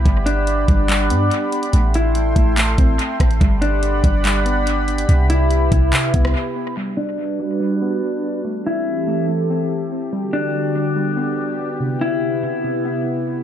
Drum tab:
HH |x-x-x-x-x-x-x-xx|x-x-x-x-x-x-x-xx|x-x-x-x-x-x-x-xx|x-x-x-x-x-x-----|
CP |--------x-------|--------x-------|--------x-------|--------x-------|
SD |----------------|--------------r-|----------------|-----------r----|
BD |o-----o---------|------o---o---o-|o-----o---------|------o---o-----|

HH |----------------|----------------|----------------|----------------|
CP |----------------|----------------|----------------|----------------|
SD |----------------|----------------|----------------|----------------|
BD |----------------|----------------|----------------|----------------|